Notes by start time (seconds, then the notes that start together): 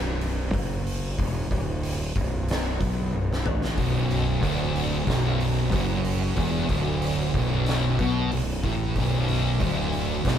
Already playing: B0
0.21 open hi-hat
0.53 F#1, kick, open hi-hat
0.87 open hi-hat
1.19 E1, kick, open hi-hat
1.51 D1, kick, open hi-hat
1.83 open hi-hat
2.16 B0, kick, open hi-hat
2.48 snare, open hi-hat
2.81 B1, kick, open hi-hat
3.13 B0, high tom
3.33 snare
3.46 A1, mid tom
3.65 snare
3.78 B0 B1, kick, open hi-hat
4.11 open hi-hat
4.42 D1 D2, kick, open hi-hat
4.76 open hi-hat
5.07 B0 B1, kick, snare, open hi-hat
5.40 open hi-hat
5.72 F#1 F#2, kick, open hi-hat
6.05 open hi-hat
6.36 E1 E2, kick, open hi-hat
6.69 D1 D2, kick, open hi-hat
7.02 open hi-hat
7.34 B0 B1, kick, open hi-hat
7.66 snare, open hi-hat
7.99 B1 B2, kick, open hi-hat
8.32 B0 B1, open hi-hat
8.64 A1 A2, kick, open hi-hat
8.96 B0 B1, kick, open hi-hat
9.28 open hi-hat
9.60 D1 D2, kick, open hi-hat
9.93 open hi-hat
10.24 B0 B1, kick, snare, open hi-hat